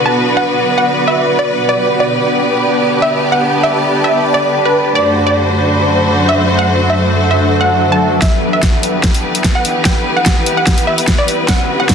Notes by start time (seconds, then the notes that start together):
Already playing: D3 B3 F#4 B4 D5
0.06 A5
0.37 F#5
0.78 F#5
1.08 E5
1.39 D5
1.69 D3 B3 G4 D5
1.92 A5
2.00 D5
2.27 B5
3.02 E5
3.32 F#5
3.63 E5
4.04 E5
4.34 D5
4.65 B4
4.95 F#2 F#3 A3 F#4 C5 D5
5.09 D4
5.27 D5
5.33 A4
5.38 E5
5.69 F#5
6.29 E5
6.59 F#5
6.90 E5
7.31 E5
7.61 F#5
7.92 A5
8.22 E3 B3 E4 G4 B4 E5, kick, snare, closed hi-hat, riser
8.53 G4 E5
8.63 kick, snare, closed hi-hat
8.72 B4
8.83 closed hi-hat
9.04 kick, snare, closed hi-hat
9.14 closed hi-hat
9.35 closed hi-hat
9.44 kick, snare, closed hi-hat
9.55 F#5
9.65 closed hi-hat
9.85 G5, kick, snare, closed hi-hat
10.17 F#5
10.26 kick, snare, closed hi-hat
10.46 closed hi-hat
10.57 F#5
10.67 kick, snare, closed hi-hat
10.78 closed hi-hat
10.87 E5
10.98 closed hi-hat
11.08 kick, snare, closed hi-hat
11.18 D5
11.28 closed hi-hat
11.48 D3 B3 F#4 F#5, kick, snare, closed hi-hat
11.80 F#5
11.89 kick, snare, closed hi-hat